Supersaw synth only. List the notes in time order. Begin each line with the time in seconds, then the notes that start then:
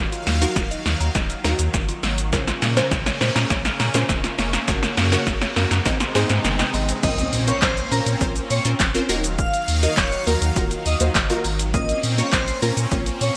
Already playing: D#3 F#3 F5
2.33 C#3 A#3 C#4
4.68 C#3 F#4
5.86 C3 G#3 D#4
7.04 A#3 C4 C#4
9.09 D#3 F#3 F5
11.74 A#3 C4 C#4